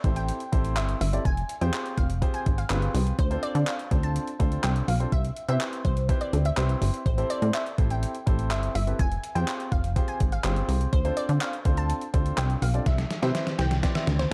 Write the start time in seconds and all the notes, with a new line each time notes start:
0.04 A1 C4 E4 G4 A4 C5, kick, closed hi-hat
0.16 G5, closed hi-hat
0.29 closed hi-hat
0.40 closed hi-hat
0.52 A1 C4 E4 G4 A4 C5, kick, closed hi-hat
0.65 closed hi-hat
0.77 G1 E5, clap, closed hi-hat
0.89 closed hi-hat
1.01 G1 E5, open hi-hat
1.13 C4 E4 G4 A4 D5, closed hi-hat
1.25 F1 G#5, kick, closed hi-hat
1.37 closed hi-hat
1.49 closed hi-hat
1.61 F2 C4 F4 G4 G#4 C5 G5, closed hi-hat
1.74 clap, closed hi-hat
1.86 closed hi-hat
1.98 F1 F5, kick, closed hi-hat
2.10 closed hi-hat
2.22 C4 F4 G4 G#4 C5, kick, closed hi-hat
2.34 G#5, closed hi-hat
2.46 G#1, kick, closed hi-hat
2.58 F5, closed hi-hat
2.70 G1 C4 F4 G4 G#4 B4, clap, closed hi-hat
2.82 closed hi-hat
2.94 C2, open hi-hat
3.07 closed hi-hat
3.19 D2 C5, kick, closed hi-hat
3.30 C4 D4 F4 A4 C5, closed hi-hat
3.43 D5, closed hi-hat
3.55 D3, closed hi-hat
3.67 F5, clap, closed hi-hat
3.79 closed hi-hat
3.91 D2 C4 D4 F4 A4 C5, kick, closed hi-hat
4.03 A5, closed hi-hat
4.16 closed hi-hat
4.27 closed hi-hat
4.39 D2 C4 D4 F4 A4 C5, kick, closed hi-hat
4.52 closed hi-hat
4.64 C2 G5, clap, closed hi-hat
4.76 closed hi-hat
4.88 B1 F5, open hi-hat
5.00 C4 D4 F4 A4 C5, closed hi-hat
5.12 C2 E5, kick, closed hi-hat
5.25 closed hi-hat
5.36 closed hi-hat
5.48 C3 C4 E4 G4 B4 C5 E5, closed hi-hat
5.61 clap, closed hi-hat
5.73 closed hi-hat
5.85 C2 C5, kick, closed hi-hat
5.97 closed hi-hat
6.09 C4 E4 G4 B4 C5, kick, closed hi-hat
6.21 D5, closed hi-hat
6.33 D2, closed hi-hat
6.45 E5, closed hi-hat
6.57 C2 C4 E4 G4 B4 C5, clap, closed hi-hat
6.69 closed hi-hat
6.82 G1, open hi-hat
6.94 closed hi-hat
7.06 A1 C5, kick, closed hi-hat
7.18 C4 E4 G4 A4 C5, closed hi-hat
7.30 D5, closed hi-hat
7.42 A2, closed hi-hat
7.54 E5, clap, closed hi-hat
7.66 closed hi-hat
7.78 A1 C4 E4 G4 A4 C5, kick, closed hi-hat
7.90 G5, closed hi-hat
8.03 closed hi-hat
8.15 closed hi-hat
8.26 A1 C4 E4 G4 A4 C5, kick, closed hi-hat
8.39 closed hi-hat
8.51 G1 E5, clap, closed hi-hat
8.63 closed hi-hat
8.75 G1 E5, open hi-hat
8.87 C4 E4 G4 A4 B4, closed hi-hat
8.99 F1 G#5, kick, closed hi-hat
9.12 closed hi-hat
9.24 closed hi-hat
9.35 F2 C4 F4 G4 G#4 C5 G5, closed hi-hat
9.48 clap, closed hi-hat
9.60 closed hi-hat
9.72 F1 F5, kick, closed hi-hat
9.84 closed hi-hat
9.96 C4 F4 G4 G#4 C5, kick, closed hi-hat
10.08 G#5, closed hi-hat
10.20 G#1, kick, closed hi-hat
10.32 F5, closed hi-hat
10.44 G1 C4 F4 G4 G#4 C5, clap, closed hi-hat
10.56 closed hi-hat
10.69 C2, open hi-hat
10.81 closed hi-hat
10.93 D2 C5, kick, closed hi-hat
11.05 C4 D4 F4 A4 C5, closed hi-hat
11.17 D5, closed hi-hat
11.29 D3, closed hi-hat
11.41 F5, clap, closed hi-hat
11.53 closed hi-hat
11.65 D2 C4 D4 F4 A4 C5, kick, closed hi-hat
11.77 A5, closed hi-hat
11.90 closed hi-hat
12.01 closed hi-hat
12.14 D2 C4 D4 F4 A4 C5, kick, closed hi-hat
12.26 closed hi-hat
12.38 C2 G5, clap, closed hi-hat
12.50 closed hi-hat
12.62 B1 F5, open hi-hat
12.74 C4 D4 F4 A4 D5, closed hi-hat
12.86 C2 E5, kick, snare, closed hi-hat
12.98 snare, closed hi-hat
13.10 snare, closed hi-hat
13.22 C3 C4 E4 G4 B4 C5 E5, snare, closed hi-hat
13.35 snare, closed hi-hat
13.47 snare, closed hi-hat
13.59 C2 G5, snare, closed hi-hat
13.71 snare, closed hi-hat
13.83 C4 E4 G4 B4 D5, kick, snare, closed hi-hat
13.95 E5, snare, closed hi-hat
14.07 D2, snare, closed hi-hat
14.19 C5, snare, closed hi-hat